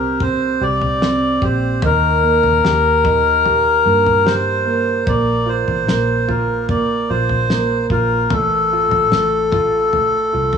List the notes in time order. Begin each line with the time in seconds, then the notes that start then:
Already playing: C2 C4 G4 A#4
0.20 C4 C5, kick, floor tom
0.61 C2 G4 D5
0.82 floor tom
1.02 C4, snare
1.42 A#1 G4 C5, kick
1.82 D#2 D#3 A#4, floor tom
2.23 A#3
2.43 D#2, floor tom
2.64 D#2 G4, snare
3.04 D#3, kick, floor tom
3.45 G4, floor tom
3.85 G2 A#3
4.07 floor tom
4.25 G4 C5, snare
4.66 A#3
5.07 A#1 A#3 D5, kick, floor tom
5.46 F4 C5
5.68 A1, floor tom
5.87 A#1 A#3, snare
6.28 F4 A#4, floor tom
6.69 A#3 D5, kick, floor tom
7.10 A#1 F4 C5
7.29 floor tom
7.50 A#3, snare
7.90 A#1 F4 A#4, kick
8.30 A1 A3 A4, floor tom
8.73 F4
8.91 A1, floor tom
9.12 A1 A3, snare
9.52 F4, kick, floor tom
9.93 A3, floor tom
10.33 C2 F4
10.53 floor tom